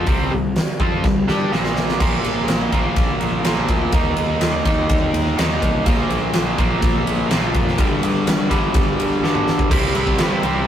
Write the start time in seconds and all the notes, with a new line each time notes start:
0.07 C2 C3 G3 C4, kick, open hi-hat
0.31 C2 C3 G3
0.56 snare, open hi-hat
0.80 F2 F3 C4 F4, kick
1.03 C2 C3 G3, kick, snare
1.28 G2 G3 D4 G4, snare
1.52 A#1 A#2 F3 A#3, snare
1.65 snare
1.76 snare
1.89 snare
1.99 A#1 A#2 F3 A#3, kick, crash
2.23 A#1, ride
2.48 A#1, snare, ride
2.72 A#1 A#2 F3 A#3, kick, ride
2.96 A#1, kick, ride
3.20 A#1, ride
3.44 A#1 A#2 F3 A#3, snare, ride
3.68 D2, kick, ride
3.92 D#2 D#3 A#3 D#4, kick, ride
4.16 D#2, ride
4.40 D#2, snare, ride
4.65 D#2 D#3 A#3 D#4, kick, ride
4.89 D#2, kick, ride
5.13 D#2, ride
5.37 D#2 D#3 A#3 D#4, snare, ride
5.62 C2, kick, ride
5.85 A#1 A#2 F3 A#3, kick, ride
6.10 A#1, ride
6.33 A#1, snare, ride
6.58 A#1 A#2 F3 A#3, kick, ride
6.82 A#1, kick, ride
7.06 A#1, ride
7.29 A#1 A#2 F3 A#3, snare, ride
7.54 F1, kick, ride
7.68 snare
7.78 G1 G2 D3 G3, kick, ride
8.03 G1, ride
8.26 G1, snare, ride
8.49 G1 G2 D3 G3, kick, ride
8.74 G1, kick, ride
8.99 G1, ride
9.22 G1 G2 D3 G3, snare
9.35 mid tom
9.47 G1, snare
9.59 kick
9.70 C2 C3 G3 C4 E4, kick, crash
9.95 C2 G3 C4 E4, ride
10.07 kick
10.18 G2 C3 G3 C4 E4, snare, ride
10.42 C2 G3 C4 E4, ride